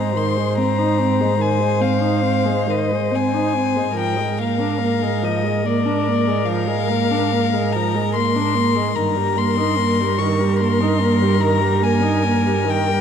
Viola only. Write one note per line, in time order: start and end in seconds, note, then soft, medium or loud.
0.00 0.17 G#3 soft
0.15 0.38 D#3 soft
0.37 0.59 G#3 soft
0.58 0.80 C4 soft
0.79 1.02 D#4 soft
1.00 1.22 C4 soft
1.21 1.38 G#3 soft
1.39 1.61 D#3 soft
1.59 1.82 G#3 soft
1.81 2.04 C4 soft
2.02 2.25 D#4 soft
2.23 2.47 C4 soft
2.46 2.70 G#3 soft
2.69 2.93 D#3 soft
2.92 3.13 G#3 soft
3.11 3.36 C4 soft
3.35 3.57 D#4 soft
3.56 3.78 C4 soft
3.76 3.95 G#3 soft
3.96 4.18 F3 soft
4.17 4.41 G#3 soft
4.39 4.62 A#3 soft
4.60 4.82 D4 soft
4.80 5.03 A#3 soft
5.02 5.24 G#3 soft
5.23 5.45 F3 soft
5.44 5.66 G#3 soft
5.64 5.87 A#3 soft
5.86 6.09 D4 soft
6.08 6.29 A#3 soft
6.28 6.47 G#3 soft
6.47 6.69 F3 soft
6.67 6.91 G#3 soft
6.90 7.12 A#3 soft
7.11 7.34 D4 soft
7.32 7.55 A#3 soft
7.53 7.77 G#3 soft
7.76 7.97 F3 soft
7.95 8.17 G#3 soft
8.16 8.37 A#3 soft
8.36 8.57 D4 soft
8.55 8.77 A#3 soft
8.76 8.95 G#3 soft
8.97 9.18 D#3 soft
9.16 9.38 G3 soft
9.36 9.59 A#3 soft
9.58 9.80 D#4 soft
9.79 10.02 A#3 soft
10.01 10.22 G3 soft
10.20 10.41 D#3 soft
10.40 10.62 G3 soft
10.61 10.83 A#3 soft
10.81 11.03 D#4 soft
11.01 11.24 A#3 soft
11.22 11.40 G3 soft
11.41 11.62 D#3 soft
11.61 11.83 G3 soft
11.82 12.04 A#3 soft
12.03 12.26 D#4 soft
12.25 12.48 A#3 soft
12.46 12.67 G3 soft
12.66 12.90 D#3 soft
12.88 13.01 G3 soft